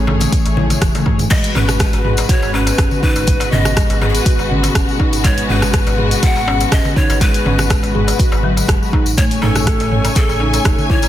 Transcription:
Already playing: A1 C#3 A3 G#4
0.07 E3 A3 G#4 C#5, mid tom, darbuka tek, high conga
0.20 closed hi-hat, tambourine, darbuka ka, high conga, low conga
0.32 E3, kick, closed hi-hat, tambourine, low conga
0.46 A1, closed hi-hat, tambourine, darbuka tek
0.57 E4, high tom, high conga, darbuka dum
0.70 closed hi-hat, tambourine, darbuka ka, high conga, low conga
0.81 E1 E3, kick, cross-stick, closed hi-hat, mid tom, tambourine
0.95 A3, closed hi-hat, mid tom, tambourine, high conga, darbuka tek
1.06 E3 A3 G#4 C#5, kick, mid tom, darbuka ka
1.19 A2, closed hi-hat, mid tom, tambourine
1.31 B2 G#3 F#4 B4 D#5, kick, closed hi-hat, crash, darbuka tek
1.44 closed hi-hat, tambourine
1.55 G#1 C#4 B4, mid tom, darbuka tek
1.69 cross-stick, mid tom, tambourine
1.79 G#3 B4, kick, cross-stick, closed hi-hat, tambourine
1.93 G#1, closed hi-hat, tambourine, darbuka tek
2.04 G#3 F#4 G#4 B4, mid tom
2.17 closed hi-hat, tambourine, darbuka tek
2.29 F#4 C#5, kick, closed hi-hat, tambourine
2.42 G#1, tambourine, darbuka ka
2.54 C#4 B4, darbuka tek
2.66 closed hi-hat, tambourine, darbuka ka
2.78 F#1, kick, cross-stick, closed hi-hat, darbuka tek
2.91 tambourine, darbuka dum
3.03 D#4 B4, kick
3.16 G#1, closed hi-hat, tambourine, darbuka ka, darbuka tek
3.27 G#3 F#4 B4, kick, closed hi-hat, tambourine
3.40 closed hi-hat, tambourine, darbuka tek
3.52 G#1 C#4 D#5, mid tom, darbuka dum
3.65 cross-stick, mid tom, tambourine
3.76 G#3, kick, cross-stick, closed hi-hat, tambourine, darbuka tek
3.90 G#1, closed hi-hat, tambourine, darbuka ka
4.01 G#3 F#4 G#4 B4, mid tom, darbuka tek
4.09 G#4
4.15 B4, closed hi-hat, tambourine
4.26 F#4, kick, closed hi-hat, tambourine
4.39 G#1, tambourine, darbuka tek
4.50 C#4, darbuka dum
4.63 closed hi-hat, tambourine, darbuka ka, darbuka tek
4.75 F#1 C#4, kick, cross-stick, closed hi-hat, tambourine
4.89 tambourine
5.00 D#4, kick, darbuka ka, darbuka tek
5.13 G#1, closed hi-hat, tambourine
5.24 G#3 F#4 B4 C#5, kick, closed hi-hat, tambourine, darbuka tek
5.37 closed hi-hat, tambourine
5.49 G#1 C#4 B4, mid tom
5.62 cross-stick, mid tom, tambourine, darbuka tek
5.73 G#3, kick, cross-stick, closed hi-hat, tambourine
5.86 G#1, closed hi-hat, tambourine, darbuka tek
5.98 G#3 F#4 G#4 B4, mid tom
6.11 closed hi-hat, tambourine
6.23 F#4 F#5, kick, closed hi-hat, tambourine, darbuka tek
6.36 G#1, tambourine, darbuka ka
6.47 C#4, darbuka tek
6.60 closed hi-hat, tambourine, darbuka ka
6.72 F#1 C#4 D#5, kick, cross-stick, closed hi-hat, tambourine
6.85 tambourine, darbuka tek, darbuka dum
6.96 D#4 C#5, kick
7.10 G#1, closed hi-hat, tambourine, darbuka ka, darbuka tek
7.21 G#3 B4, kick, closed hi-hat, tambourine
7.34 closed hi-hat, tambourine
7.45 G#1 C#4, mid tom, darbuka tek, darbuka dum
7.59 cross-stick, mid tom, tambourine
7.70 G#3, kick, cross-stick, closed hi-hat, tambourine, darbuka tek
7.83 G#1, closed hi-hat, tambourine, darbuka ka
7.95 G#3 F#4 G#4 B4, mid tom
8.08 closed hi-hat, tambourine, darbuka ka, darbuka tek
8.19 F#4, kick, closed hi-hat, tambourine
8.32 G#1, tambourine, darbuka tek
8.43 F#3, darbuka dum
8.57 closed hi-hat, tambourine, darbuka ka
8.68 F#1 G#3, kick, cross-stick, closed hi-hat, tambourine, darbuka tek
8.83 tambourine
8.93 G#3 D#4 F#4 B4, kick, darbuka ka, darbuka tek
9.06 A1, closed hi-hat, tambourine
9.17 C#3 A3 C#5 G#5, kick, closed hi-hat, tambourine, darbuka tek
9.31 closed hi-hat, tambourine
9.42 A1 D#4 A4, mid tom, darbuka tek
9.55 cross-stick, mid tom, tambourine
9.67 A3, kick, cross-stick, closed hi-hat
9.80 A1, closed hi-hat, tambourine, darbuka tek
9.92 A3 A4 C#5 G#5, mid tom
10.05 closed hi-hat, tambourine, darbuka tek
10.15 G#4 A4, kick, closed hi-hat, tambourine
10.29 A1, tambourine, darbuka ka
10.40 D#4, darbuka tek
10.53 closed hi-hat, tambourine, darbuka ka
10.65 E1 D#4, kick, cross-stick, closed hi-hat, darbuka tek
10.78 tambourine, darbuka dum
10.90 E4 C#5, kick
11.02 A1, closed hi-hat, tambourine, darbuka ka, darbuka tek

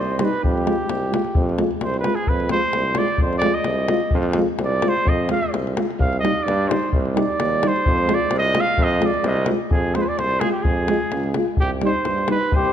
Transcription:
Already playing: C2
0.00 C5
0.19 G3 D#4 C5, davul high
0.24 B4
0.33 davul high
0.43 F2 G4, davul low
0.58 davul high
0.65 G#3 F4, davul high
0.88 C2, davul high
1.12 G#3 F4, davul high
1.25 davul high
1.35 F2, davul low
1.49 davul high
1.58 G#3 F4, davul high
1.71 davul high
1.81 C2 C5, davul high
1.94 davul high
2.00 B4
2.04 G#3 F4, davul high
2.15 G#4, davul high
2.27 F2 B4, davul low
2.40 davul high
2.49 G#3 F4 C5, davul high
2.73 C2, davul high
2.95 G#3 F4 D5, davul high
3.08 davul high
3.18 F2, davul low
3.22 C5
3.33 davul high
3.38 D5, davul high
3.43 G#3 F4
3.54 D#5
3.64 C2, davul high
3.88 G#3 F4, davul high
4.00 davul high
4.11 F2, davul low
4.23 davul high
4.33 G#3, davul high
4.38 F4
4.59 C2, davul high
4.64 D5
4.82 G#3 F4, davul high
4.89 C5
4.97 davul high
5.05 F2 D#5, davul low
5.29 G#3 F4 F5, davul high
5.43 davul high
5.53 C2, davul high
5.67 davul high
5.76 G#3 F4, davul high
5.91 davul high
5.99 C2 F5, davul low
6.13 davul high
6.20 G3 D#4 D#5
6.25 davul high
6.43 G2 D5
6.48 davul high
6.69 G3 D#4 C5, davul high
6.83 davul high
6.93 C2, davul low
7.05 davul high
7.15 G3 D#4 D5, davul high
7.40 D#2, davul high
7.62 G3 D#4, davul high
7.67 C5
7.76 davul high
7.86 F2, davul low
7.98 davul high
8.07 G#3 F4, davul high
8.14 D5
8.31 C2, davul high
8.38 D#5
8.55 G#3 F4, davul high
8.60 F5
8.67 davul high
8.78 F2, davul low
8.83 D#5
8.91 davul high
9.01 G#3 F4, davul high
9.06 D5
9.14 davul high
9.24 C2 D#5, davul high
9.36 davul high
9.46 G#3 F4, davul high
9.71 F2 G#4, davul low
9.95 G#3 F4 C5, davul high
10.00 B4 C5
10.08 D5
10.18 C2 C5, davul high
10.31 davul high
10.40 G#3 F4 G#4, davul high
10.52 G4
10.62 F2 G#4, davul low
10.88 G#3 F4, davul high
11.12 C#2, davul high
11.23 davul high
11.34 G#3 F4, davul high
11.57 C2 G4, davul low
11.81 G3 D#4 C5, davul high
12.05 G2, davul high
12.18 davul high
12.28 G3 D#4 B4, davul high
12.52 C2 G4 C5, davul low
12.65 davul high

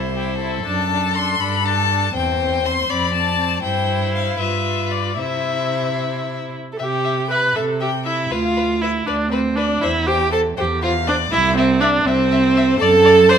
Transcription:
Already playing: C2 E4 C5
0.16 E4 G4
0.41 E4 A4
0.66 F#2 D4 A5
0.90 D4
1.15 D4 C6
1.40 G2 D4 B5
1.65 D4 A5
1.89 D4
2.14 E2 C4 C5 G5
2.40 C4
2.65 C4 C6
2.89 F2 C4 D5 B5
3.14 C4 A5
3.38 C4
3.63 G2 E4 C5 G5
4.15 F5
4.40 G2 F4 B4 E5
4.92 D5
5.18 C3 E4 C5 E5
6.73 A4
6.79 C3 G4 E5 G5
7.05 E5
7.30 B4 E5 B5
7.56 C3 A4 E5 A5
7.81 G4 E5 G5
8.05 E4 E5
8.31 D2 F4 B4 F5
8.57 B4
8.81 E4 B4 E5
9.07 D2 D4 B4 D5
9.32 C4 B4 C5
9.56 D4 B4 D5
9.81 E2 E4 C5 E5
10.07 G4 C5 G5
10.32 A4 C5 A5
10.57 E2 G4 C5 G5
10.82 F4 C5 F5
11.07 D4 C5 D5
11.32 C2 E4 E5
11.57 C4 C5 E5
11.81 D4 D5 E5
12.05 C2 C4 C5 E5
12.32 E5
12.57 E5
12.79 F#2 A4 D5 A5
13.05 D5
13.29 C5 D5 C6

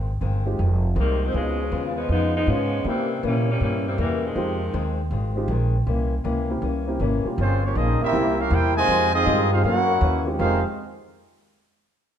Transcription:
Already playing: G#1
0.21 G1 F2 D#3 G#3 C4
0.46 G#3 C4 D#4 F4 G4
0.58 F1 F2 D#3 G#3 C4
0.95 C2 F2 D#3 G#3 C4
0.99 C3 D#3 G3 A#3
1.24 D#3 F3 G#3 C4
1.32 C#2 B2 C#3 F3 G#3 B3 C#4 D#4 F4 G#4
1.71 D#2 C#3 G#3 B3 F4
1.97 C#3 F3 G#3 B3
2.09 F2 C#3 G#3 B3 D#4 F4
2.13 F3
2.36 F3 G#3 B3 D#4
2.46 G#2 C#3 F3 G#3 B3 C#4 F4
2.51 B3
2.83 C3 E3 A#3 C4 C#4 E4 G4
2.88 E3 G3 A#3 C4
3.23 A#2 C3 E3 G3 A#3 C#4
3.50 E3 G3 A#3 C#4
3.60 G2 C3 E3 G3 A#3 C#4
3.87 E3 G3 A#3 C4
3.97 E2 C3 E3 G3 A#3 C#4
4.01 C#3 E3
4.26 C3 D#3 F3 G#3
4.35 F2 D#3 G#3 C4 D#4 F4 G4
4.73 D#2 F2 D#3 G#3 C4
5.11 G#1 F2 D#3 G#3 C4
5.36 G#3 C4 D#4 F4 G4
5.48 A#1 F2 D#3 G#3 C4
5.86 C2 C3 E3 A#3 C#4
6.24 C#2 C3 E3 A#3 C#4
6.50 A#3 C4 C#4 E4 G4
6.62 C2 C3 E3 A#3 C#4
6.87 A#3 C4 C#4 E4 G4
7.00 G#1 C3 E3 A#3 C#4
7.24 G3 A#3 C#4 F4 G4, muted upright bass stroke
7.38 G1 G2 F3 G#3 A#3 C4 C#4 F4 C5
7.63 F3 A#3 C#4 F4 G4 C#5
7.75 A#1 G2 F3 A#3 C4 C#4 D#4 F4 G#4 D#5
8.01 G3 A#3 C4 E4 G4 A#4 E5, muted upright bass stroke
8.12 C2 C3 G3 A#3 C4 E4 G4
8.38 C#4 F4 G4 A#4 F5
8.50 E2 C3 G3 A#3 E4 G4 A#4 C5 G5
8.74 C3 D#3 G#3 F4 D#5 G#5
8.79 C5
8.88 F2 D#3 G#3 C4
9.13 G#3 C4 D#4 F4 G#4 D#5
9.25 F2 G2 D#3 G#3 C4 D#4 F4 G4 G#4
9.52 G#3 C4 D#4 F4 G#4 C5 F5
9.63 F#2 E3 A#3 C#4 E4 F#4 A#4 C#5 F#5
10.01 D#2 F#2 E3 A#3 C#4
10.26 G#3 C4 D#4 F4 G4
10.38 F1 F2 C3 D#3 G#3 C4 D#4 F4 G4 G#4 C5 F5

